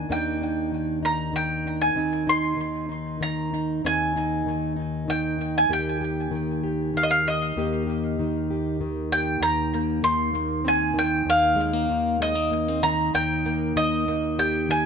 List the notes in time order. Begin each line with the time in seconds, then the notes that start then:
Already playing: D#3 D#4 G#5
0.09 D#2 A#3 D4 D#4 G5
0.41 D4
0.72 D#3
1.03 D#4 A#5
1.33 D#3 G5
1.65 D4
1.81 G#5
1.94 D#2 C4 D#4
2.27 D#4 C6
2.57 D#3
2.89 D#4
3.21 D#3 A#5
3.53 D#4
3.84 D#2 C4 D#4 G#5
4.16 D#4
4.46 D#3
4.76 D#4
5.08 D#3 G5
5.38 D#4
5.58 G#5
5.69 D#2 A#3 G4
5.73 G5
6.01 G4
6.31 D#3
6.63 G4
6.94 D#3 F5
7.03 D#5
7.11 F5
7.25 G4 D#5
7.56 D#2 A#3 G4
7.87 G4
8.19 D#3
8.50 G4
8.81 D#3
9.12 G4 G5
9.41 D#2 A#5
9.74 A#3
10.03 D#3 C6
10.33 A#3
10.65 C4 G#5
10.94 D#3
10.99 G5
11.26 D#2
11.30 F5
11.56 G#3
11.73 A#3
11.89 D#3
12.20 G#3 D#5
12.35 A#3
12.51 A#3
12.68 C4
12.83 D#3 A#5
13.14 D#2 G5
13.46 A#3
13.76 D#3 D#5
14.08 A#3
14.39 G4 G5
14.69 D#3 G#5